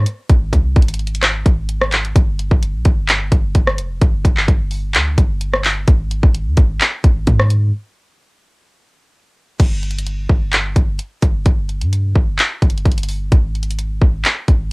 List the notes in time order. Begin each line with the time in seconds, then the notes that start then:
0.06 closed hi-hat
0.30 G#1, kick, closed hi-hat
0.53 C2, kick, closed hi-hat
0.76 G#1, kick, closed hi-hat
0.82 closed hi-hat
0.88 closed hi-hat
0.94 closed hi-hat
0.99 closed hi-hat
1.07 closed hi-hat
1.15 closed hi-hat
1.23 cross-stick, clap, closed hi-hat
1.46 G#1, kick, closed hi-hat
1.69 closed hi-hat
1.82 cross-stick
1.92 clap, closed hi-hat
2.05 closed hi-hat
2.16 G1, kick, closed hi-hat
2.39 closed hi-hat
2.51 G1, kick
2.63 closed hi-hat
2.74 A#1
2.85 G1, kick, closed hi-hat
3.09 clap, closed hi-hat
3.32 G1, kick, closed hi-hat
3.55 G1, kick, closed hi-hat
3.67 cross-stick
3.78 F1, closed hi-hat
4.02 G1, kick, closed hi-hat
4.25 G1, kick, closed hi-hat
4.37 clap
4.48 G1, kick, closed hi-hat
4.71 open hi-hat
4.95 D2, clap, closed hi-hat
5.18 G1, kick, closed hi-hat
5.41 closed hi-hat
5.54 cross-stick
5.64 clap, open hi-hat
5.88 G#1, kick, closed hi-hat
6.11 closed hi-hat
6.23 G#1, kick
6.35 closed hi-hat
6.47 D#2
6.57 G#1, kick, closed hi-hat
6.81 clap, closed hi-hat
7.04 G#1, kick, closed hi-hat
7.27 G#2, kick, closed hi-hat
7.39 cross-stick
7.50 closed hi-hat
9.60 G1, kick, closed hi-hat, crash
9.83 closed hi-hat
9.91 closed hi-hat
9.99 closed hi-hat
10.07 closed hi-hat
10.29 G1, kick
10.53 clap, closed hi-hat
10.76 G1, kick, closed hi-hat
10.99 closed hi-hat
11.22 G1, kick, closed hi-hat
11.46 G1, kick, closed hi-hat
11.69 closed hi-hat
11.81 G2, closed hi-hat
11.93 closed hi-hat
12.15 G1, kick
12.39 clap, closed hi-hat
12.62 G1, kick, closed hi-hat
12.70 closed hi-hat
12.78 closed hi-hat
12.85 G1, kick, closed hi-hat
12.91 closed hi-hat
12.98 closed hi-hat
13.03 closed hi-hat
13.08 open hi-hat
13.32 G#1, kick, closed hi-hat
13.55 closed hi-hat
13.63 closed hi-hat
13.71 closed hi-hat
13.79 closed hi-hat
14.02 G#1, kick
14.25 clap, closed hi-hat
14.48 G#1, kick, closed hi-hat